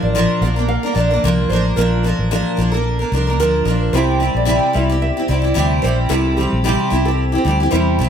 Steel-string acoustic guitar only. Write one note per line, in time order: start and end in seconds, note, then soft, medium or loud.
0.00 0.14 F3 medium
0.00 0.15 A#3 medium
0.00 0.15 D4 medium
0.00 0.15 A#4 medium
0.15 0.42 A#2 medium
0.15 0.41 F3 medium
0.15 0.42 A#3 medium
0.15 0.43 D4 medium
0.15 0.43 A#4 medium
0.42 0.57 F3 medium
0.42 0.58 A#3 medium
0.42 0.56 D4 medium
0.42 0.55 A#4 medium
0.56 0.85 A#3 soft
0.56 0.83 D4 medium
0.56 0.82 A#4 medium
0.83 0.94 A#3 soft
0.83 0.95 D4 soft
0.83 0.96 A#4 medium
0.95 1.11 F3 medium
0.95 1.11 A#3 medium
0.95 1.11 D4 medium
0.95 1.09 A#4 medium
1.11 1.24 A#3 soft
1.11 1.24 D4 soft
1.11 1.23 A#4 soft
1.24 1.51 A#2 medium
1.24 1.49 F3 medium
1.24 1.51 A#3 medium
1.24 1.51 D4 medium
1.24 1.52 A#4 medium
1.50 1.76 F3 medium
1.50 1.77 A#3 medium
1.50 1.77 D4 medium
1.50 1.78 A#4 medium
1.77 2.05 A#2 medium
1.77 2.03 F3 medium
1.77 2.04 A#3 medium
1.77 2.05 D4 medium
1.77 2.05 A#4 medium
2.04 2.30 F3 medium
2.04 2.30 A#3 medium
2.04 2.31 D4 medium
2.04 2.32 A#4 medium
2.31 2.59 A#2 medium
2.31 2.56 F3 medium
2.31 2.57 A#3 medium
2.31 2.58 D4 medium
2.31 2.59 A#4 medium
2.57 2.73 F3 medium
2.57 2.73 A#3 medium
2.57 2.73 D4 medium
2.57 2.70 A#4 medium
2.72 3.00 A#3 soft
2.72 2.99 D4 medium
2.72 2.98 A#4 medium
2.99 3.12 A#3 soft
2.99 3.13 D4 medium
2.99 3.12 A#4 medium
3.12 3.27 F3 soft
3.12 3.28 A#3 medium
3.12 3.27 D4 medium
3.12 3.26 A#4 medium
3.27 3.39 A#3 soft
3.27 3.40 D4 soft
3.27 3.40 A#4 soft
3.40 3.67 A#2 medium
3.40 3.64 F3 medium
3.40 3.65 A#3 medium
3.40 3.66 D4 medium
3.40 3.67 A#4 medium
3.65 3.93 F3 medium
3.65 3.94 A#3 medium
3.65 3.94 D4 medium
3.65 3.95 A#4 medium
3.93 4.21 C3 medium
3.93 4.19 G3 medium
3.93 4.20 C4 medium
3.93 4.21 E4 medium
3.93 4.21 G4 medium
4.20 4.45 G3 medium
4.20 4.45 C4 medium
4.20 4.46 E4 medium
4.20 4.46 G4 medium
4.45 4.74 C3 medium
4.45 4.72 G3 medium
4.45 4.73 C4 medium
4.45 4.74 E4 medium
4.45 4.75 G4 loud
4.73 4.89 G3 medium
4.73 4.90 C4 medium
4.73 4.90 E4 medium
4.73 4.88 G4 medium
4.90 5.18 C4 soft
4.90 5.17 E4 medium
4.90 5.16 G4 medium
5.17 5.28 C4 soft
5.17 5.29 E4 soft
5.17 5.29 G4 medium
5.28 5.44 G3 medium
5.28 5.44 C4 medium
5.28 5.43 E4 medium
5.28 5.41 G4 medium
5.42 5.54 C4 soft
5.42 5.55 E4 soft
5.42 5.55 G4 medium
5.54 5.82 C3 medium
5.54 5.81 G3 medium
5.54 5.82 C4 medium
5.54 5.83 E4 medium
5.54 5.83 G4 medium
5.82 6.09 G3 medium
5.82 6.09 C4 medium
5.82 6.09 E4 medium
5.82 6.10 G4 medium
6.09 6.37 C3 medium
6.09 6.36 G3 medium
6.09 6.37 C4 medium
6.09 6.38 E4 medium
6.09 6.38 G4 medium
6.37 6.63 G3 medium
6.37 6.64 C4 medium
6.37 6.64 E4 medium
6.37 6.65 G4 medium
6.64 6.91 C3 medium
6.64 6.89 G3 medium
6.64 6.90 C4 medium
6.64 6.91 E4 medium
6.64 6.91 G4 medium
6.90 7.06 G3 medium
6.90 7.06 C4 medium
6.90 7.05 E4 medium
6.90 7.04 G4 medium
7.05 7.34 C4 soft
7.05 7.32 E4 medium
7.05 7.31 G4 medium
7.32 7.45 C4 medium
7.32 7.45 E4 soft
7.32 7.45 G4 medium
7.45 7.60 G3 medium
7.45 7.61 C4 medium
7.45 7.60 E4 medium
7.45 7.59 G4 medium
7.60 7.71 C4 soft
7.60 7.71 E4 soft
7.60 7.71 G4 medium
7.71 7.99 C3 medium
7.71 7.97 G3 medium
7.71 7.99 C4 medium
7.71 7.99 E4 medium
7.71 8.00 G4 medium
7.99 8.09 G3 medium
7.99 8.09 C4 medium
7.99 8.09 E4 medium
7.99 8.09 G4 medium